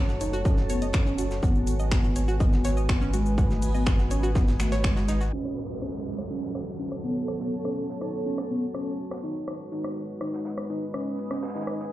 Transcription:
Already playing: F#1 F#4 A4 C#5 A5
0.09 F#4, snare, shaker
0.21 D#4 C#5, closed hi-hat, shaker
0.33 F#4, shaker
0.45 C#4 D#5, kick, closed hi-hat, shaker
0.57 snare, shaker
0.70 B3 C#5, closed hi-hat, shaker
0.82 D#5, closed hi-hat, shaker
0.93 C#4, finger snap, kick, snare, closed hi-hat, shaker
1.06 C#4, shaker
1.18 F#4, closed hi-hat, shaker
1.31 snare, shaker
1.43 G#1 B3 F#4 B4 G#5, kick, closed hi-hat, shaker
1.55 D#5, shaker
1.67 B4, closed hi-hat, shaker
1.80 D#5, shaker
1.91 B3 F#4, finger snap, kick, snare, closed hi-hat, shaker
2.04 F#4, shaker
2.16 C#5, closed hi-hat, shaker
2.28 F#4, shaker
2.40 B3 D#5, kick, closed hi-hat, shaker
2.53 snare, shaker
2.64 C#5 G#5, snare, closed hi-hat, shaker
2.77 D#5, shaker
2.89 B3, finger snap, kick, snare, closed hi-hat, shaker
3.01 C#4, shaker
3.14 G#3 F#4, closed hi-hat, shaker
3.26 shaker
3.38 F#4, kick, closed hi-hat, shaker
3.50 A3, snare, shaker
3.62 closed hi-hat, open hi-hat, shaker
3.75 B3 D#5, shaker
3.86 F#4, finger snap, kick, snare, closed hi-hat, shaker
3.99 F#4, snare, shaker
4.11 C#4 C#5, closed hi-hat, shaker
4.23 F#4, shaker
4.35 B3 D#5, kick, snare, closed hi-hat, shaker
4.48 snare, closed hi-hat, shaker
4.59 A3 F#5, finger snap, snare, closed hi-hat, shaker
4.72 C#5, snare, closed hi-hat, shaker
4.84 G#3, finger snap, kick, snare, closed hi-hat, shaker
4.96 F#4, snare, closed hi-hat, shaker
5.08 D#4, snare, closed hi-hat, shaker
5.21 F#4, snare, shaker
5.33 F#3 C#4 A4, closed hi-hat, downlifter
5.45 A5, cross-stick
5.63 A4
5.78 C#4 C#5, closed hi-hat
5.82 cross-stick
6.05 closed hi-hat
6.18 cross-stick
6.30 C#4, closed hi-hat
6.43 snare
6.55 cross-stick, snare
6.79 C#4, closed hi-hat
6.92 cross-stick
7.03 B3, closed hi-hat
7.28 B3, cross-stick, closed hi-hat
7.40 B3, snare
7.53 open hi-hat
7.65 C#4, cross-stick
7.77 closed hi-hat
7.89 snare
8.01 D#4, cross-stick, closed hi-hat
8.25 C#4, closed hi-hat
8.38 cross-stick, snare
8.50 B3, closed hi-hat
8.74 C#4, cross-stick, closed hi-hat
8.98 closed hi-hat
9.11 cross-stick, snare
9.23 G#3 D#4 F#4 B4, closed hi-hat
9.47 B4 D#5, cross-stick, closed hi-hat
9.72 D#4, closed hi-hat
9.84 cross-stick
9.92 G#5
9.96 closed hi-hat
10.21 D#4, cross-stick, closed hi-hat
10.33 snare
10.45 snare, closed hi-hat
10.58 cross-stick
10.70 D#4, closed hi-hat
10.94 C#4, cross-stick, closed hi-hat
11.19 G#4, closed hi-hat
11.31 C#4, cross-stick, snare
11.43 snare, closed hi-hat
11.48 snare, closed hi-hat
11.54 D#4, snare, closed hi-hat
11.61 snare, closed hi-hat
11.67 cross-stick, closed hi-hat
11.79 snare

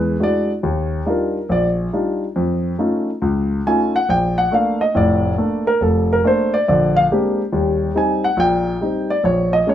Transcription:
Already playing: E2 G#3 B4
0.20 G#3 D4 E4 F#4 D5
0.63 D#2
1.06 G3 D4 D#4 F4 A#4
1.49 A#1 D5
1.93 G3 D4 D#4 F4
2.36 F2
2.79 A3 C#4 D#4 F4
3.22 C#2
3.67 A3 C#4 D#4 F4 G#5
3.96 F#5
4.09 A#1 G5
4.38 F#5
4.52 A3 A#3 D4 F5
4.81 D#5
4.95 F1 A2 D5
5.38 A3 A#3 D4
5.67 A#4
5.81 F1 A4
6.13 A#4
6.24 A3 A#3 D4 C5
6.54 D5
6.68 A#1 D3 D5
6.96 F5
7.11 G#3 A#3 C4 D4 G4
7.53 D#2 G3
7.95 G3 C4 D#4 G#5
8.24 F#5
8.37 A#1 A#2 G5
8.81 G3 C4 D#4
9.10 D5
9.24 A#1 C#5
9.53 D#5
9.67 G#3 A#3 C#4 C#5

